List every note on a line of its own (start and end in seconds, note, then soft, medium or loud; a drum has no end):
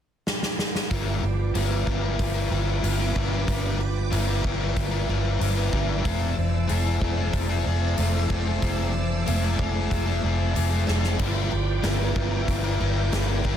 0.27 snare medium
0.43 snare medium
0.59 snare medium
0.75 snare medium
0.91 1.21 G1 medium
0.91 1.54 G2 medium
0.91 1.54 D3 medium
0.91 1.40 F3 medium
0.91 1.23 G3 medium
0.91 1.40 G3 medium
0.91 1.39 B3 medium
0.91 1.23 D4 medium
0.91 1.23 F4 medium
0.91 1.38 G4 medium
0.91 6.01 B4 medium
0.91 1.24 B4 loud
0.91 13.57 D5 medium
0.91 6.01 G5 medium
0.91 6.01 D6 medium
0.91 kick medium
0.91 open hi-hat soft
1.23 1.53 G1 medium
1.23 1.88 F3 medium
1.23 muted overdriven electric guitar stroke soft
1.38 1.56 F3 medium
1.38 1.56 G3 soft
1.38 1.57 B3 medium
1.38 1.57 G4 medium
1.55 1.85 G1 medium
1.55 2.54 G2 medium
1.55 2.20 D3 medium
1.55 1.87 F3 medium
1.55 1.86 G3 medium
1.55 1.88 G3 medium
1.55 1.89 B3 medium
1.55 1.73 D4 medium
1.55 1.72 F4 medium
1.55 1.89 G4 medium
1.55 1.70 B4 medium
1.55 open hi-hat soft
1.71 1.87 D4 medium
1.71 1.88 F4 medium
1.71 1.89 B4 medium
1.87 2.17 G1 medium
1.87 2.19 F3 medium
1.87 2.35 G3 medium
1.87 2.03 B3 medium
1.87 2.03 D4 medium
1.87 2.03 F4 medium
1.87 2.02 G4 medium
1.87 2.01 B4 medium
1.87 kick medium
2.02 2.35 D4 medium
2.02 2.35 F4 medium
2.02 2.33 B4 medium
2.02 muted clean electric guitar stroke soft
2.19 2.49 G1 medium
2.19 2.52 F3 medium
2.19 kick medium
2.19 open hi-hat soft
2.34 2.50 D4 medium
2.34 2.51 F4 medium
2.34 2.51 B4 medium
2.50 2.81 G1 medium
2.50 2.69 F3 medium
2.50 2.81 G3 medium
2.50 2.67 G3 medium
2.50 2.67 B3 medium
2.50 2.82 D4 medium
2.50 2.84 F4 medium
2.50 2.67 G4 medium
2.50 2.83 B4 medium
2.82 3.13 G1 medium
2.82 3.32 G2 medium
2.82 3.32 D3 medium
2.82 3.01 F3 medium
2.82 3.14 G3 medium
2.82 2.99 G3 medium
2.82 2.99 B3 medium
2.82 3.00 D4 medium
2.82 3.00 F4 medium
2.82 2.98 G4 medium
2.82 2.97 B4 medium
2.82 open hi-hat soft
2.98 3.14 F3 medium
2.98 3.14 G3 medium
2.98 3.15 B3 medium
2.98 3.15 D4 medium
2.98 3.16 F4 medium
2.98 3.16 G4 medium
2.98 3.16 B4 medium
3.14 3.46 G1 medium
3.14 3.34 F3 medium
3.14 3.46 G3 medium
3.14 3.32 G3 medium
3.14 3.32 D4 medium
3.14 4.77 D4 medium
3.14 3.32 F4 medium
3.14 3.30 G4 medium
3.14 3.30 B4 medium
3.14 kick medium
3.31 3.48 F3 soft
3.31 3.48 G3 soft
3.31 3.48 B3 medium
3.31 3.47 D4 soft
3.31 3.48 F4 medium
3.31 3.48 G4 medium
3.31 3.48 B4 medium
3.47 4.08 G1 medium
3.47 4.10 G2 medium
3.47 4.11 D3 medium
3.47 3.97 F3 medium
3.47 3.78 G3 medium
3.47 3.95 G3 medium
3.47 3.95 B3 medium
3.47 3.79 D4 medium
3.47 3.80 F4 medium
3.47 3.94 G4 loud
3.47 3.79 B4 medium
3.47 kick medium
3.47 open hi-hat soft
3.79 4.44 F3 medium
3.79 muted overdriven electric guitar stroke soft
3.95 4.12 F3 medium
3.95 4.12 G3 medium
3.95 4.12 B3 medium
3.95 4.12 G4 medium
4.11 4.42 G1 medium
4.11 4.76 G2 medium
4.11 4.77 D3 medium
4.11 4.43 F3 medium
4.11 4.42 G3 medium
4.11 4.43 G3 medium
4.11 4.44 B3 medium
4.11 4.28 D4 medium
4.11 4.28 F4 medium
4.11 4.45 G4 medium
4.11 4.26 B4 medium
4.11 open hi-hat soft
4.27 4.43 D4 medium
4.27 4.44 F4 medium
4.27 4.44 B4 medium
4.43 4.75 G1 medium
4.43 4.60 F3 medium
4.43 4.92 G3 medium
4.43 4.59 G3 medium
4.43 4.59 B3 medium
4.43 4.61 D4 medium
4.43 4.61 F4 medium
4.43 4.59 G4 medium
4.43 4.58 B4 medium
4.43 kick medium
4.59 4.93 D4 soft
4.59 4.92 F4 medium
4.59 4.90 B4 medium
4.76 5.07 G1 medium
4.76 5.09 F3 medium
4.76 kick medium
4.76 open hi-hat soft
4.91 5.08 D4 soft
4.91 5.09 F4 medium
4.91 5.09 B4 medium
5.07 5.39 G1 medium
5.07 5.25 F3 medium
5.07 5.38 G3 medium
5.07 5.23 G3 medium
5.07 5.23 B3 medium
5.07 5.39 D4 medium
5.07 5.41 F4 medium
5.07 5.23 G4 medium
5.07 5.41 B4 medium
5.40 5.71 G1 medium
5.40 5.89 G2 medium
5.40 5.89 D3 medium
5.40 5.58 F3 medium
5.40 5.70 G3 medium
5.40 5.57 G3 loud
5.40 5.56 B3 loud
5.40 5.57 D4 medium
5.40 5.57 F4 medium
5.40 5.55 G4 medium
5.40 5.55 B4 loud
5.40 open hi-hat soft
5.56 5.72 F3 medium
5.56 5.71 G3 medium
5.56 5.72 B3 medium
5.56 5.71 D4 medium
5.56 5.73 F4 medium
5.56 5.73 G4 medium
5.56 5.73 B4 medium
5.72 6.03 G1 medium
5.72 5.91 F3 medium
5.72 6.03 G3 medium
5.72 5.90 G3 medium
5.72 5.89 B3 medium
5.72 5.89 D4 medium
5.72 6.05 D4 medium
5.72 5.89 F4 medium
5.72 5.88 G4 medium
5.72 5.87 B4 medium
5.72 kick medium
5.88 6.04 G3 soft
5.88 6.04 B3 medium
5.88 6.04 D4 soft
5.88 6.05 F4 medium
5.88 6.03 G4 medium
5.88 6.03 B4 medium
6.04 6.35 F1 medium
6.04 6.67 F3 medium
6.04 6.68 F3 medium
6.04 6.36 A3 medium
6.04 6.36 C4 medium
6.04 6.55 C4 loud
6.04 6.37 F4 loud
6.04 6.37 A4 loud
6.04 6.53 A4 medium
6.04 11.16 C5 medium
6.04 11.16 A5 medium
6.04 11.16 E6 medium
6.04 kick medium
6.04 open hi-hat soft
6.36 6.67 F1 medium
6.36 muted overdriven electric guitar stroke soft
6.53 6.70 C4 medium
6.53 6.71 A4 medium
6.68 7.00 F1 medium
6.68 7.96 F3 medium
6.68 7.01 F3 medium
6.68 7.00 A3 medium
6.68 7.96 A3 medium
6.68 6.86 C4 medium
6.68 7.02 C4 medium
6.68 6.85 F4 medium
6.68 6.84 A4 medium
6.68 7.03 A4 medium
6.68 open hi-hat soft
6.84 7.01 C4 medium
6.84 7.01 F4 medium
6.84 7.02 A4 medium
7.00 7.32 F1 medium
7.00 7.49 A3 medium
7.00 7.17 C4 medium
7.00 7.18 C4 medium
7.00 7.17 F4 medium
7.00 7.15 A4 medium
7.00 7.17 A4 medium
7.00 kick medium
7.16 7.50 C4 medium
7.16 7.50 F4 medium
7.16 7.48 A4 medium
7.33 7.63 F1 medium
7.33 kick medium
7.33 open hi-hat soft
7.49 7.65 C4 soft
7.49 7.66 F4 medium
7.49 7.66 A4 medium
7.65 7.96 F1 medium
7.65 7.97 F3 medium
7.65 7.96 A3 medium
7.65 7.97 C4 medium
7.65 7.82 C4 medium
7.65 7.98 F4 medium
7.65 7.98 A4 medium
7.65 7.82 A4 medium
7.83 muted clean electric guitar stroke soft
7.97 8.28 F1 medium
7.97 8.61 F3 medium
7.97 8.31 F3 medium
7.97 9.25 A3 medium
7.97 8.27 A3 medium
7.97 8.15 C4 medium
7.97 8.16 C4 medium
7.97 8.14 F4 medium
7.97 8.12 A4 medium
7.97 8.13 A4 loud
7.97 open hi-hat soft
8.13 8.29 C4 medium
8.13 8.30 F4 medium
8.13 8.30 A4 medium
8.29 8.60 F1 medium
8.29 8.61 A3 medium
8.29 8.47 C4 medium
8.29 9.91 C4 medium
8.29 8.46 F4 medium
8.29 8.44 A4 medium
8.29 kick medium
8.46 8.61 C4 soft
8.46 8.63 F4 soft
8.46 8.62 A4 medium
8.61 9.23 F1 medium
8.61 9.25 F3 medium
8.61 8.92 A3 medium
8.61 8.92 C4 medium
8.61 9.12 C4 medium
8.61 8.94 F4 medium
8.61 8.93 A4 medium
8.61 9.09 A4 medium
8.61 kick medium
8.61 open hi-hat soft
8.93 muted overdriven electric guitar stroke soft
9.10 9.26 C4 medium
9.10 9.27 A4 medium
9.26 9.57 F1 medium
9.26 9.58 F3 medium
9.26 10.53 F3 medium
9.26 10.54 A3 medium
9.26 9.57 A3 medium
9.26 9.58 C4 medium
9.26 9.43 C4 medium
9.26 9.42 F4 medium
9.26 9.59 A4 medium
9.26 9.41 A4 medium
9.26 open hi-hat soft
9.42 9.58 C4 soft
9.42 9.59 F4 medium
9.42 9.59 A4 medium
9.58 9.89 F1 medium
9.58 10.07 A3 medium
9.58 9.75 C4 medium
9.58 9.75 F4 medium
9.58 9.72 A4 medium
9.58 kick medium
9.74 10.07 C4 soft
9.74 10.06 F4 medium
9.74 10.04 A4 medium
9.91 10.21 F1 medium
9.91 kick medium
9.91 open hi-hat soft
10.06 10.22 C4 medium
10.06 10.23 F4 medium
10.06 10.23 A4 medium
10.22 10.54 F1 medium
10.22 10.55 F3 medium
10.22 10.53 A3 medium
10.22 10.54 C4 medium
10.22 10.39 C4 medium
10.22 10.55 F4 medium
10.22 10.55 A4 medium
10.22 10.39 A4 medium
10.53 10.86 F1 medium
10.53 11.21 F3 medium
10.53 10.87 F3 medium
10.53 10.85 A3 medium
10.53 11.20 A3 medium
10.53 10.71 C4 medium
10.53 10.73 C4 medium
10.53 10.71 F4 medium
10.53 10.69 A4 loud
10.53 open hi-hat soft
10.58 10.71 A4 medium
10.70 10.86 C4 medium
10.70 10.88 F4 medium
10.70 10.87 A4 medium
10.86 11.18 F1 medium
10.86 11.20 F3 medium
10.86 11.17 A3 medium
10.86 11.03 C4 medium
10.86 11.05 C4 medium
10.86 11.04 E4 medium
10.86 11.03 F4 medium
10.86 11.01 A4 medium
10.86 snare soft
11.03 11.18 C4 medium
11.03 11.19 E4 soft
11.03 11.19 F4 medium
11.03 11.17 A4 medium
11.03 snare medium
11.18 11.50 G1 medium
11.18 11.84 G2 medium
11.18 11.84 D3 medium
11.18 11.70 F3 medium
11.18 11.51 G3 medium
11.18 11.70 B3 medium
11.18 11.51 D4 medium
11.18 11.52 F4 medium
11.18 11.69 F4 loud
11.18 11.68 G4 medium
11.18 13.57 B4 medium
11.18 11.52 B4 loud
11.18 13.57 G5 medium
11.18 13.57 D6 medium
11.18 kick medium
11.18 open hi-hat soft
11.18 crash medium
11.51 11.82 G1 medium
11.51 12.15 F3 medium
11.51 muted overdriven electric guitar stroke soft
11.68 11.85 F3 soft
11.68 11.85 B3 medium
11.68 11.86 F4 medium
11.68 11.86 G4 medium
11.82 12.14 G1 medium
11.82 12.83 G2 medium
11.82 12.49 D3 medium
11.82 12.15 F3 medium
11.82 12.15 G3 medium
11.82 12.16 B3 medium
11.82 12.00 D4 medium
11.82 11.99 F4 medium
11.82 12.17 F4 medium
11.82 11.98 B4 medium
11.82 snare loud
11.82 open hi-hat soft
11.87 12.17 G4 medium
11.98 12.15 D4 medium
11.98 12.16 F4 medium
11.98 12.17 B4 medium
12.15 12.46 G1 medium
12.15 12.33 F3 medium
12.15 12.64 G3 medium
12.15 12.32 B3 medium
12.15 12.32 D4 medium
12.15 12.32 F4 medium
12.15 12.31 G4 medium
12.15 12.30 B4 medium
12.15 kick medium
12.31 12.65 D4 medium
12.31 12.64 F4 medium
12.31 12.62 B4 medium
12.31 muted clean electric guitar stroke soft
12.48 12.78 G1 medium
12.48 12.80 F3 medium
12.48 kick medium
12.48 open hi-hat soft
12.63 12.79 D4 medium
12.63 12.80 F4 medium
12.63 12.80 B4 medium
12.79 13.11 G1 medium
12.79 12.98 F3 medium
12.79 13.10 G3 medium
12.79 12.97 B3 medium
12.79 13.11 D4 medium
12.79 13.13 F4 medium
12.79 12.97 F4 medium
12.79 12.96 G4 medium
12.79 13.13 B4 medium
13.12 13.43 G1 medium
13.12 13.57 G2 medium
13.12 13.57 D3 medium
13.12 13.31 F3 medium
13.12 13.43 G3 medium
13.12 13.29 B3 loud
13.12 13.28 D4 medium
13.12 13.28 F4 medium
13.12 13.29 F4 medium
13.12 13.27 G4 medium
13.12 13.26 B4 medium
13.12 snare loud
13.12 open hi-hat soft
13.27 13.44 F3 medium
13.27 13.45 B3 medium
13.27 13.43 D4 medium
13.27 13.45 F4 medium
13.27 13.46 F4 medium
13.27 13.46 G4 medium
13.27 13.45 B4 medium
13.44 13.57 G1 medium
13.44 13.57 G3 medium
13.44 13.57 B3 medium
13.44 13.57 D4 medium
13.44 13.57 F4 medium
13.44 13.57 G4 medium
13.44 13.57 B4 medium
13.44 kick medium